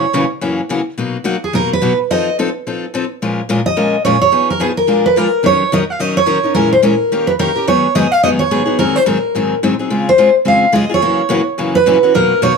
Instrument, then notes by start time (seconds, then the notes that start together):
steel-string acoustic guitar
Already playing: C#5
0.13 F#2 C#3 E3 A#3 C#4 F#4
0.41 F#2 C#3 E3 A#3 C#4 F#4
0.69 F#2 C#3 E3 A#3 C#4 F#4
0.98 B2 F#3 A#3 D#4 F#4
1.24 B2 F#3 A#3 D#4 F#4
1.44 G#4
1.53 B2 F#3 A#3 D#4 F#4 A#4
1.73 B4
1.82 B2 F#3 A#3 D#4 F#4
2.11 F3 C4 D#4 A4 D#5
2.39 F3 C4 D#4 A4
2.67 F3 C4 D#4 A4
2.94 F3 C4 D#4 A4
3.22 A#2 F3 G#3 C#4 F4 A#4
3.49 A#2 F3 G#3 C#4 F4 A#4
3.66 D#5
3.77 A#2 F3 G#3 C#4 F4 A#4
4.05 A#2 F3 G#3 C#4 F4 A#4 C#5
4.21 C#5
4.32 F3 B3 D#4 G#4
4.50 A#4
4.60 F3 B3 D#4 G#4
4.77 A#4
4.87 A#2 F3 G#3 D4 F4 A#4
5.06 B4
5.16 A#2 F3 G#3 D4 F4 A#4
5.43 D#3 F#3 C#4 D#4 A#4 C#5
5.72 D#3 F#3 C#4 D#4 A#4 D#5
5.90 F5
5.99 D#3 F#3 C#4 D#4 A#4 D#5
6.17 C#5
6.26 D#3 F#3 C#4 D#4 A#4
6.43 C#4 D#4 A#4
6.55 A#2 E3 G#3 C#4 G#4 A#4
6.73 C5
6.82 A#2 E3 G#3 C#4 G#4 A#4
7.12 D#3 A#3 C#4 G4 A#4
7.27 B4
7.39 D#3 A#3 C#4 G4 A#4
7.56 C#4 G4 A#4
7.67 G#2 D#3 F#3 B3 D#4 G#4 C#5
7.95 G#2 D#3 F#3 B3 D#4 G#4 D#5
8.12 F5
8.23 G#2 D#3 F#3 B3 D#4 G#4 D#5
8.39 C#5
8.51 G#2 D#3 F#3 B3 D#4 G#4
8.66 F#3 B3 D#4 G#4
8.79 G#2 D#3 F#3 C4 D#4 G#4 A#4
8.96 C5
9.06 G#2 D#3 F#3 C4 D#4 G#4 A#4
9.35 G#2 D#3 F#3 C4 D#4 G#4
9.63 G#2 D#3 F#3 C4 D#4 G#4
9.79 F#3 C4 D#4 G#4
9.90 C#3 G#3 C4 F4 G#4
10.09 C5
10.18 C#3 G#3 C4 F4 G#4
10.45 C#3 G#3 C4 F4 G#4 F5
10.72 C#3 G#3 C4 F4 G#4 D#5
10.89 C4 F4 G#4
10.94 C#5
11.02 F#2 C#3 E3 A#3 C#4 F#4
11.29 F#2 C#3 E3 A#3 C#4 F#4
11.58 F#2 C#3 E3 A#3 C#4 F#4
11.75 B4
11.86 F#2 C#3 E3 A#3 C#4 F#4
12.03 E3 A#3 C#4 F#4
12.14 B2 F#3 A#3 D#4 F#4 A#4
12.42 B2 F#3 A#3 D#4 F#4 C#5